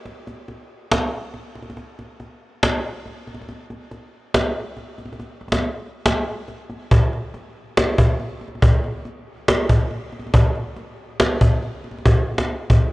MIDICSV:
0, 0, Header, 1, 2, 480
1, 0, Start_track
1, 0, Tempo, 428571
1, 60, Time_signature, 4, 2, 24, 8
1, 14479, End_track
2, 0, Start_track
2, 0, Title_t, "Cajon"
2, 62, Note_on_c, 9, 38, 40
2, 174, Note_off_c, 9, 38, 0
2, 305, Note_on_c, 9, 38, 35
2, 417, Note_off_c, 9, 38, 0
2, 543, Note_on_c, 9, 38, 38
2, 655, Note_off_c, 9, 38, 0
2, 1027, Note_on_c, 9, 38, 125
2, 1139, Note_off_c, 9, 38, 0
2, 1500, Note_on_c, 9, 38, 41
2, 1612, Note_off_c, 9, 38, 0
2, 1742, Note_on_c, 9, 38, 30
2, 1821, Note_off_c, 9, 38, 0
2, 1821, Note_on_c, 9, 38, 31
2, 1903, Note_off_c, 9, 38, 0
2, 1903, Note_on_c, 9, 38, 33
2, 1983, Note_off_c, 9, 38, 0
2, 1983, Note_on_c, 9, 38, 43
2, 2095, Note_off_c, 9, 38, 0
2, 2227, Note_on_c, 9, 38, 34
2, 2339, Note_off_c, 9, 38, 0
2, 2462, Note_on_c, 9, 38, 37
2, 2574, Note_off_c, 9, 38, 0
2, 2945, Note_on_c, 9, 38, 119
2, 3057, Note_off_c, 9, 38, 0
2, 3420, Note_on_c, 9, 38, 43
2, 3532, Note_off_c, 9, 38, 0
2, 3661, Note_on_c, 9, 38, 32
2, 3742, Note_off_c, 9, 38, 0
2, 3742, Note_on_c, 9, 38, 32
2, 3821, Note_off_c, 9, 38, 0
2, 3821, Note_on_c, 9, 38, 31
2, 3902, Note_off_c, 9, 38, 0
2, 3902, Note_on_c, 9, 38, 42
2, 4014, Note_off_c, 9, 38, 0
2, 4144, Note_on_c, 9, 38, 34
2, 4256, Note_off_c, 9, 38, 0
2, 4381, Note_on_c, 9, 38, 36
2, 4493, Note_off_c, 9, 38, 0
2, 4864, Note_on_c, 9, 38, 121
2, 4976, Note_off_c, 9, 38, 0
2, 5338, Note_on_c, 9, 38, 40
2, 5450, Note_off_c, 9, 38, 0
2, 5580, Note_on_c, 9, 38, 31
2, 5661, Note_off_c, 9, 38, 0
2, 5661, Note_on_c, 9, 38, 30
2, 5741, Note_off_c, 9, 38, 0
2, 5741, Note_on_c, 9, 38, 32
2, 5820, Note_off_c, 9, 38, 0
2, 5820, Note_on_c, 9, 38, 43
2, 5932, Note_off_c, 9, 38, 0
2, 6062, Note_on_c, 9, 38, 22
2, 6142, Note_off_c, 9, 38, 0
2, 6142, Note_on_c, 9, 38, 29
2, 6185, Note_off_c, 9, 38, 0
2, 6185, Note_on_c, 9, 38, 91
2, 6221, Note_off_c, 9, 38, 0
2, 6221, Note_on_c, 9, 38, 37
2, 6302, Note_off_c, 9, 38, 0
2, 6302, Note_on_c, 9, 38, 35
2, 6414, Note_off_c, 9, 38, 0
2, 6784, Note_on_c, 9, 38, 127
2, 6896, Note_off_c, 9, 38, 0
2, 7258, Note_on_c, 9, 38, 40
2, 7370, Note_off_c, 9, 38, 0
2, 7499, Note_on_c, 9, 38, 38
2, 7611, Note_off_c, 9, 38, 0
2, 7741, Note_on_c, 9, 36, 109
2, 7853, Note_off_c, 9, 36, 0
2, 7984, Note_on_c, 9, 38, 35
2, 8096, Note_off_c, 9, 38, 0
2, 8222, Note_on_c, 9, 38, 36
2, 8334, Note_off_c, 9, 38, 0
2, 8705, Note_on_c, 9, 38, 126
2, 8817, Note_off_c, 9, 38, 0
2, 8940, Note_on_c, 9, 36, 91
2, 9052, Note_off_c, 9, 36, 0
2, 9179, Note_on_c, 9, 38, 41
2, 9291, Note_off_c, 9, 38, 0
2, 9421, Note_on_c, 9, 38, 32
2, 9499, Note_off_c, 9, 38, 0
2, 9499, Note_on_c, 9, 38, 32
2, 9579, Note_off_c, 9, 38, 0
2, 9579, Note_on_c, 9, 38, 32
2, 9660, Note_on_c, 9, 36, 110
2, 9691, Note_off_c, 9, 38, 0
2, 9772, Note_off_c, 9, 36, 0
2, 9903, Note_on_c, 9, 38, 35
2, 10015, Note_off_c, 9, 38, 0
2, 10139, Note_on_c, 9, 38, 37
2, 10251, Note_off_c, 9, 38, 0
2, 10623, Note_on_c, 9, 38, 123
2, 10735, Note_off_c, 9, 38, 0
2, 10860, Note_on_c, 9, 36, 89
2, 10972, Note_off_c, 9, 36, 0
2, 11096, Note_on_c, 9, 38, 39
2, 11208, Note_off_c, 9, 38, 0
2, 11340, Note_on_c, 9, 38, 32
2, 11420, Note_off_c, 9, 38, 0
2, 11420, Note_on_c, 9, 38, 32
2, 11499, Note_off_c, 9, 38, 0
2, 11499, Note_on_c, 9, 38, 32
2, 11580, Note_on_c, 9, 36, 110
2, 11611, Note_off_c, 9, 38, 0
2, 11692, Note_off_c, 9, 36, 0
2, 11823, Note_on_c, 9, 38, 36
2, 11935, Note_off_c, 9, 38, 0
2, 12060, Note_on_c, 9, 38, 37
2, 12172, Note_off_c, 9, 38, 0
2, 12543, Note_on_c, 9, 38, 124
2, 12655, Note_off_c, 9, 38, 0
2, 12781, Note_on_c, 9, 36, 95
2, 12893, Note_off_c, 9, 36, 0
2, 13020, Note_on_c, 9, 38, 42
2, 13132, Note_off_c, 9, 38, 0
2, 13261, Note_on_c, 9, 38, 31
2, 13341, Note_off_c, 9, 38, 0
2, 13341, Note_on_c, 9, 38, 33
2, 13422, Note_off_c, 9, 38, 0
2, 13422, Note_on_c, 9, 38, 32
2, 13501, Note_on_c, 9, 36, 111
2, 13534, Note_off_c, 9, 38, 0
2, 13613, Note_off_c, 9, 36, 0
2, 13741, Note_on_c, 9, 38, 22
2, 13821, Note_off_c, 9, 38, 0
2, 13821, Note_on_c, 9, 38, 29
2, 13866, Note_off_c, 9, 38, 0
2, 13866, Note_on_c, 9, 38, 91
2, 13901, Note_off_c, 9, 38, 0
2, 13901, Note_on_c, 9, 38, 37
2, 13981, Note_off_c, 9, 38, 0
2, 13981, Note_on_c, 9, 38, 34
2, 14093, Note_off_c, 9, 38, 0
2, 14220, Note_on_c, 9, 36, 94
2, 14332, Note_off_c, 9, 36, 0
2, 14479, End_track
0, 0, End_of_file